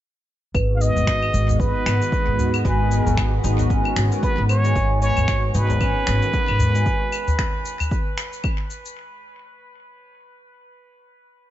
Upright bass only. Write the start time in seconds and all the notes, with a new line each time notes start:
0.55 G#1
0.96 G#1
1.34 G#1
1.86 G#1
2.28 G#2
2.65 G#1
3.07 G#1
3.44 G#1
3.97 G#1
4.38 G#2
4.76 G#1
5.17 G#1
5.55 G#1
6.08 G#1
6.49 G#2